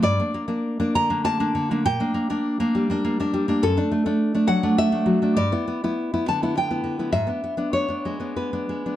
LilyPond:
\new Staff \with { instrumentName = "Nylon-string guitar" } { \time 3/4 \key g \dorian \tempo 4 = 101 << { d''4. bes''8 a''4 | g''4. r4. | \key e \dorian a'4. fis''8 e''4 | d''4. a''8 g''4 |
e''4 cis''4 b'4 | } \\ { g,16 <bes d'>16 bes16 <bes d'>8 <bes d'>16 d16 <bes d'>16 bes16 <bes d'>16 d16 <bes d'>16 | bes,16 <bes d'>16 bes16 <bes d'>8 <bes d'>16 g16 <bes d'>16 bes16 <bes d'>16 g16 <bes d'>16 | fis,16 <a d'>16 a16 <a d'>8 <a d'>16 fis16 <a d'>16 a16 <a d'>16 fis16 <a d'>16 | g,16 <b e'>16 b16 <b e'>8 <b e'>16 d16 <b e'>16 b16 <b e'>16 d16 <b e'>16 |
gis,16 <b d'>16 b16 <b d'>8 <b d'>16 gis16 <b d'>16 b16 <b d'>16 gis16 <b d'>16 | } >> }